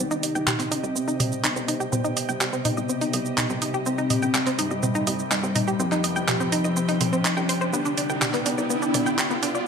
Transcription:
0.00 ambient pad C3 G4 D#5 G5, synth drone C3 G3, soft synth lead D#4, riser
0.11 synth arpeggio sound D#4, shaker
0.23 synth arpeggio sound D#5, open hi-hat, shaker
0.35 analog synth bass G1, synth arpeggio sound G5, shaker
0.47 synth arpeggio sound G4, clap, mid tom, shaker
0.59 synth arpeggio sound C4, clap, open hi-hat, shaker
0.71 soft synth lead C4, synth arpeggio sound D#4, open hi-hat, shaker
0.84 analog synth bass C2, synth arpeggio sound D#5, shaker
0.96 synth arpeggio sound C4, shaker
1.08 synth arpeggio sound D#4, shaker
1.20 analog synth bass C2, synth arpeggio sound D#5, open hi-hat, mid tom, shaker
1.32 shaker
1.44 soft synth lead B3, synth arpeggio sound D#4, clap, shaker
1.56 analog synth bass C2, synth arpeggio sound C4, shaker
1.68 synth arpeggio sound D#4, open hi-hat, shaker
1.80 synth arpeggio sound G4, shaker
1.92 analog synth bass C2, soft synth lead B3, synth arpeggio sound C4, mid tom, shaker
2.05 synth arpeggio sound D#4, shaker
2.17 synth arpeggio sound D#5, open hi-hat, shaker
2.29 analog synth bass G1, synth arpeggio sound G5, shaker
2.41 soft synth lead B3, synth arpeggio sound G4, clap, shaker
2.53 synth arpeggio sound C4, shaker
2.65 synth arpeggio sound D#4, open hi-hat, mid tom, shaker
2.77 analog synth bass C2, synth arpeggio sound D#5, shaker
2.89 synth arpeggio sound C4, shaker
3.01 synth arpeggio sound D#4, open hi-hat, shaker
3.13 analog synth bass C2, synth arpeggio sound D#5, open hi-hat, shaker
3.26 shaker
3.38 synth arpeggio sound D#4, clap, mid tom, shaker
3.50 analog synth bass C2, synth arpeggio sound C4, shaker
3.62 synth arpeggio sound D#4, open hi-hat, shaker
3.74 synth arpeggio sound G4, shaker
3.86 analog synth bass C2, soft synth lead C4, synth arpeggio sound C4, shaker
3.98 synth arpeggio sound D#4, shaker
4.10 synth arpeggio sound D#5, open hi-hat, mid tom, shaker
4.22 analog synth bass G1, synth arpeggio sound G5, shaker
4.34 synth arpeggio sound G4, clap, shaker
4.47 synth arpeggio sound C4, clap, open hi-hat, shaker
4.59 soft synth lead G3, synth arpeggio sound D#4, open hi-hat, shaker
4.71 analog synth bass C2, synth arpeggio sound D#5, shaker
4.83 synth arpeggio sound C4, mid tom, shaker
4.95 synth arpeggio sound D#4, shaker
5.07 analog synth bass C2, synth arpeggio sound D#5, open hi-hat, shaker
5.19 shaker
5.31 soft synth lead G3, synth arpeggio sound D#4, clap, shaker
5.43 analog synth bass C2, synth arpeggio sound C4, shaker
5.55 synth arpeggio sound D#4, open hi-hat, mid tom, shaker
5.68 synth arpeggio sound G4, shaker
5.80 analog synth bass C2, soft synth lead F3, synth arpeggio sound C4, shaker
5.92 synth arpeggio sound D#4, clap, shaker
6.04 synth arpeggio sound D#5, open hi-hat, shaker
6.16 analog synth bass G1, synth arpeggio sound G5, shaker
6.28 soft synth lead F3, synth arpeggio sound G4, clap, mid tom, shaker
6.40 synth arpeggio sound C4, shaker
6.52 synth arpeggio sound D#4, open hi-hat, shaker
6.64 analog synth bass C2, synth arpeggio sound D#5, shaker
6.77 synth arpeggio sound C4, shaker
6.89 synth arpeggio sound D#4, open hi-hat, shaker
7.01 analog synth bass C2, synth arpeggio sound C4, open hi-hat, mid tom, shaker
7.13 synth arpeggio sound C4, shaker
7.25 synth arpeggio sound D#4, clap, shaker
7.37 analog synth bass C2, synth arpeggio sound G5, shaker
7.49 synth arpeggio sound C5, open hi-hat, shaker
7.61 synth arpeggio sound C5, shaker
7.73 analog synth bass C2, ambient pad B3 D5, synth arpeggio sound B3, soft synth lead D4, shaker
7.85 synth arpeggio sound D4, shaker
7.98 synth arpeggio sound D5, open hi-hat, shaker
8.10 analog synth bass C2, synth arpeggio sound G5, shaker
8.22 synth arpeggio sound G4, clap, mid tom, shaker
8.34 synth arpeggio sound B3, clap, open hi-hat, shaker
8.46 soft synth lead B3, synth arpeggio sound D4, open hi-hat, shaker
8.58 analog synth bass C2, synth arpeggio sound D5, shaker
8.70 synth arpeggio sound B3, soft synth lead D4, shaker
8.82 synth arpeggio sound D4, shaker
8.94 analog synth bass C2, synth arpeggio sound D5, open hi-hat, mid tom, shaker
9.06 synth arpeggio sound G5, shaker
9.18 synth arpeggio sound G4, clap, shaker
9.30 analog synth bass C2, synth arpeggio sound B3, shaker
9.43 soft synth lead B3, synth arpeggio sound D4, open hi-hat, shaker
9.55 synth arpeggio sound D5, shaker

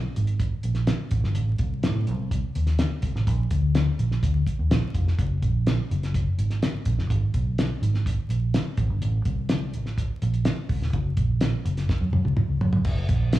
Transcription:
0.16 fingered electric bass G#1, closed hi-hat
0.27 closed hi-hat
0.40 kick, closed hi-hat
0.63 fingered electric bass A#1, closed hi-hat
0.75 snare, closed hi-hat
0.87 snare, closed hi-hat
1.11 fingered electric bass A1, kick, closed hi-hat
1.24 fingered electric bass G1, snare
1.35 fingered electric bass A1, closed hi-hat
1.58 fingered electric bass C2, kick, closed hi-hat
1.83 fingered electric bass A2, snare, closed hi-hat
2.07 fingered electric bass C2, closed hi-hat
2.31 kick, closed hi-hat
2.55 fingered electric bass D#2, closed hi-hat
2.67 snare, closed hi-hat
2.79 snare, closed hi-hat
3.02 fingered electric bass C2, kick, closed hi-hat
3.15 fingered electric bass A1, snare
3.27 fingered electric bass A#1, kick, closed hi-hat
3.51 fingered electric bass D2, kick, closed hi-hat
3.75 snare, closed hi-hat
3.99 fingered electric bass A#1, closed hi-hat
4.11 snare
4.23 fingered electric bass D2, kick, closed hi-hat
4.47 muted fingered electric bass stroke, kick, closed hi-hat
4.59 fingered electric bass D#2
4.70 fingered electric bass A#1, snare, closed hi-hat
4.95 fingered electric bass F1, kick, closed hi-hat
5.08 snare
5.19 fingered electric bass F#1, kick, closed hi-hat
5.42 fingered electric bass A#1, kick, closed hi-hat
5.67 snare, closed hi-hat
5.91 fingered electric bass F#1, closed hi-hat
6.03 snare, closed hi-hat
6.14 kick, closed hi-hat
6.38 fingered electric bass G#1, closed hi-hat
6.50 snare, closed hi-hat
6.63 snare, closed hi-hat
6.85 fingered electric bass A#1, kick, closed hi-hat
6.98 fingered electric bass F#1, snare
7.10 fingered electric bass G#1, kick, closed hi-hat
7.34 fingered electric bass B1, kick, closed hi-hat
7.58 snare, closed hi-hat
7.82 fingered electric bass G#1, closed hi-hat
7.94 snare
8.06 kick, closed hi-hat
8.29 fingered electric bass A#1, closed hi-hat
8.54 snare, closed hi-hat
8.77 fingered electric bass A1, kick, closed hi-hat
8.90 fingered electric bass G1
9.02 fingered electric bass A1, closed hi-hat
9.25 fingered electric bass C2, kick, closed hi-hat
9.49 snare, closed hi-hat
9.73 fingered electric bass A1, closed hi-hat
9.86 snare
9.98 kick, closed hi-hat
10.22 fingered electric bass A#1, closed hi-hat
10.34 closed hi-hat
10.45 snare, closed hi-hat
10.69 fingered electric bass C2, kick, open hi-hat
10.81 fingered electric bass D#1, snare
10.93 fingered electric bass F#1, kick, closed hi-hat
11.17 fingered electric bass A#1, kick, closed hi-hat
11.41 snare, closed hi-hat
11.65 fingered electric bass F#1, closed hi-hat
11.77 snare, closed hi-hat
11.89 kick, snare
12.01 fingered electric bass F#2
12.13 fingered electric bass F#2, high tom
12.25 fingered electric bass C#2, high tom
12.37 muted fingered electric bass stroke, mid tom
12.49 fingered electric bass C#2
12.61 fingered electric bass F#2, floor tom
12.73 floor tom
12.84 fingered electric bass F#1, kick, crash
13.09 fingered electric bass A#1, kick, closed hi-hat
13.33 snare, closed hi-hat

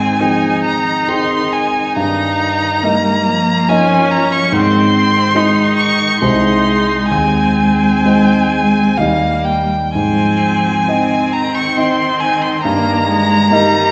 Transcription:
Already playing: grand piano G#2, cello D#3, viola C4, violin G#5
0.19 cello F3, grand piano C4 D#4 G#4, viola D#4
0.64 cello D#3, violin A#5
1.08 grand piano C4 D#4 G#4, violin C6
1.53 violin G#5
1.96 grand piano G2, cello D#3, viola D#4, violin A#5
2.83 cello G3, grand piano A#3 D#4 D#5, viola A#3
3.27 cello F3
3.68 grand piano A#3 D#4 D#5, viola C#4, violin G#5
4.11 violin A#5
4.32 violin C#6
4.51 grand piano G#2, cello D#3, viola C4, violin C6
4.93 viola C4
5.33 cello D#3, grand piano G#3 D#4 D#5, viola D#4
5.77 violin C#6
6.20 grand piano C2 G#3 D#4 C5, cello G#3, viola D#4, violin C6
7.09 grand piano D#2, cello G#3, viola C4, violin G#5
8.05 grand piano G#3 D#4 C5
8.97 grand piano D#2 G3 D#4 D#5, cello G3, viola A#3, violin F5
9.45 violin G5
9.94 grand piano G#2, cello F3, viola C4, violin G#5
10.88 cello D#3, grand piano C4 D#4 D#5, viola C4
11.33 violin A#5
11.55 violin C#6
11.76 grand piano C4 D#4 D#5, violin C6
12.20 violin G#5
12.42 violin C6
12.63 grand piano G2, viola A#3, violin A#5
13.10 viola G#3
13.51 viola G3, grand piano A#3 D#4 D#5

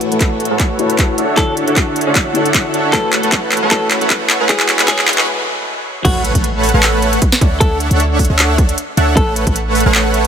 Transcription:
Already playing: string section E3 A3 F#4 A4 C#5, felt piano A3 E4 F#4 B4 C#5, riser
0.01 closed hi-hat
0.12 supersaw synth A3 A4 B4 C#5 F#5, closed hi-hat
0.21 kick, clap, closed hi-hat
0.40 closed hi-hat
0.45 closed hi-hat
0.51 supersaw synth A3 A4 B4 C#5 F#5
0.60 kick, clap, closed hi-hat
0.78 felt piano A3 E4 F#4 B4 C#5, closed hi-hat
0.90 closed hi-hat
0.98 supersaw synth F#5, kick, clap, closed hi-hat
1.18 string section D3 A4, supersaw synth D4 A4 C#5 E5 F#5, closed hi-hat
1.36 felt piano D3 D4 E4 F#4 C#5, clean electric guitar A4, kick, clap, closed hi-hat
1.57 closed hi-hat
1.68 supersaw synth D4 A4 C#5 E5 F#5, closed hi-hat
1.76 kick, clap, closed hi-hat
1.96 closed hi-hat
2.01 closed hi-hat
2.06 supersaw synth D4 A4 C#5 E5 F#5
2.15 kick, clap, closed hi-hat
2.33 felt piano D3 D4 E4 F#4 C#5, closed hi-hat
2.45 closed hi-hat
2.54 supersaw synth D4 C#5 F#5, kick, clap, closed hi-hat
2.74 supersaw synth D4 A4 C#5 E5 F#5, closed hi-hat
2.91 string section E3 C#4, felt piano A3 E4 F#4 B4, supersaw synth A3, clean electric guitar A4, kick, clap, closed hi-hat
2.95 felt piano C#5
3.13 clap, closed hi-hat
3.23 supersaw synth A3 A4 B4 C#5 F#5, closed hi-hat
3.32 kick, clap, closed hi-hat
3.52 clap, closed hi-hat
3.57 closed hi-hat
3.62 supersaw synth A3 A4 B4 C#5 F#5
3.69 felt piano A3 E4 F#4 B4, supersaw synth A3 A4 B4 F#5, clean electric guitar A4, kick, clap, closed hi-hat
3.73 felt piano C#5
3.91 clap, closed hi-hat
4.01 supersaw synth A3 A4 B4 C#5 F#5, closed hi-hat
4.10 kick, clap, closed hi-hat
4.30 clap, closed hi-hat
4.40 supersaw synth A3 A4 B4 C#5 F#5
4.47 string section E3 B3 D4 G#4 B4, felt piano G#3 E4 F#4 B4, supersaw synth G#3 G#4, clean electric guitar G#4, kick, clap, closed hi-hat
4.51 felt piano C#5
4.60 clap
4.69 clap, closed hi-hat
4.79 supersaw synth G#3 G#4 B4 C#5 F#5, clap, closed hi-hat
4.86 felt piano G#3 E4 F#4 B4, clean electric guitar G#4, kick, clap, closed hi-hat
4.90 felt piano C#5
4.99 clap
5.08 clap, closed hi-hat
5.13 closed hi-hat
5.18 supersaw synth G#3 G#4 B4 C#5 F#5, clap
5.27 swell
6.05 808-style bass A1, supersaw synth A3 A4 B4 C#5 F#5, clean electric guitar F#4, kick, closed hi-hat, crash, impact
6.25 closed hi-hat
6.35 808-style bass A1, supersaw synth A3 C#5, kick, closed hi-hat
6.44 closed hi-hat
6.63 open hi-hat
6.69 closed hi-hat
6.74 808-style bass A1, supersaw synth A3 A4 B4 C#5 F#5
6.83 clap, closed hi-hat
7.02 closed hi-hat
7.13 closed hi-hat
7.22 kick, closed hi-hat
7.32 snare
7.41 808-style bass D2, supersaw synth D4 A4 C#5 E5 F#5, kick, closed hi-hat
7.60 808-style bass D2, supersaw synth D4 A4 C#5 E5, clean electric guitar A4, kick, closed hi-hat
7.80 closed hi-hat
7.91 808-style bass D2, supersaw synth D4 A4 C#5 E5 F#5, closed hi-hat
8.00 closed hi-hat
8.19 kick, open hi-hat
8.25 closed hi-hat
8.30 808-style bass D2, supersaw synth D4 A4 C#5 E5 F#5
8.39 clap, closed hi-hat
8.58 kick, closed hi-hat
8.69 closed hi-hat
8.78 closed hi-hat
8.97 808-style bass D2, supersaw synth D4 A4 C#5 E5 F#5, closed hi-hat
9.17 808-style bass A1, supersaw synth A3 B4 C#5 F#5, clean electric guitar A4, kick, closed hi-hat
9.36 closed hi-hat
9.47 808-style bass A1, supersaw synth A3 A4 B4 C#5 F#5, kick, closed hi-hat
9.56 closed hi-hat
9.75 open hi-hat
9.80 closed hi-hat
9.86 808-style bass A1, supersaw synth A3 A4 B4 C#5 F#5
9.95 clap, closed hi-hat
10.14 closed hi-hat

